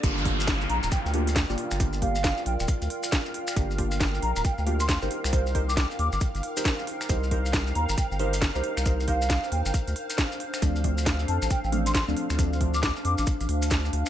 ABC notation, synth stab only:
X:1
M:4/4
L:1/16
Q:"Swing 16ths" 1/4=136
K:Gm
V:1 name="Synth stab"
[B,DFG]2 [B,DFG]8 [B,DFG] z2 [B,DFG]3 | [B,DFG]2 [B,DFG] z12 z | [B,DFG]2 [B,DFG]8 [B,DFG] z2 [EGBc]3 | [EGBc]2 [EGBc] z8 [EGBc]4- [EGBc] |
[EGBc]2 [EGBc]8 [EGBc] z2 [EGBc]3 | [EGBc]2 [EGBc] z12 z | [F,A,CD]2 [F,A,CD]8 [F,A,CD] z2 [F,A,CD]3 | [F,A,CD]2 [F,A,CD] z12 z |]